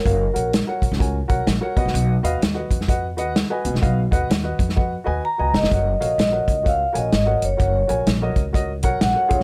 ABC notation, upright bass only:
X:1
M:4/4
L:1/16
Q:"Swing" 1/4=127
K:F#
V:1 name="Upright bass" clef=bass
F,,,2 A,,,3 z A,,, C,,3 B,,,2 A,,, z B,,, A,,, | B,,,2 D,,2 D,,2 E,,4 D,,3 z C,, B,,, | B,,,2 D,,2 D,,2 E,,4 D,,2 z C,, =E,,, ^E,,, | F,,,2 A,,,2 A,,,2 C,,4 A,,,2 G,,,2 F,,,2 |
F,,,2 A,,,2 A,,,2 C,,4 B,,,2 A,,, z C,, z |]